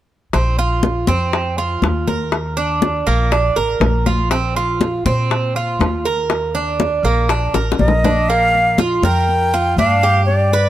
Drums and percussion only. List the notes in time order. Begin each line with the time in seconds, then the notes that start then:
0.33 high bongo, high conga
0.58 high conga
0.83 high bongo, high conga
1.07 high conga
1.33 high bongo, high conga
1.58 high conga
1.82 high bongo, low bongo, high conga
2.08 high conga
2.32 high bongo, high conga
2.57 high conga
2.82 high bongo, high conga
3.07 high bongo
3.32 high bongo, high conga
3.56 high bongo, high conga
3.81 high bongo, low bongo, high conga
4.06 high bongo, high conga
4.31 high bongo, high conga
4.57 high conga
4.81 high bongo, high conga
5.06 high conga
5.31 high bongo, high conga
5.55 high conga
5.81 high bongo, low bongo, high conga
6.30 high bongo, high conga
6.55 high conga
6.80 high bongo, high conga
7.05 high bongo
7.29 high bongo, high conga
7.54 high bongo, high conga
7.72 high bongo
7.79 high conga
7.88 low bongo
8.04 low bongo, high conga
8.29 high conga
8.54 high conga
8.78 high conga
9.03 high conga
9.28 high conga
9.54 high conga
9.78 high conga
10.28 high conga
10.53 high conga